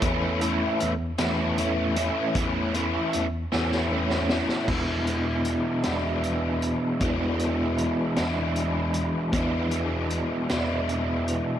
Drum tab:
CC |------------|------------|x-----------|------------|
HH |x-x-x-x-x-x-|x-x-x-------|--x-x-x-x-x-|x-x-x-x-x-x-|
SD |------o-----|------oo-ooo|------o-----|------o-----|
BD |o-----------|o-----------|o-----------|o-----------|

CC |------------|
HH |x-x-x-x-x-x-|
SD |------o-----|
BD |o-----------|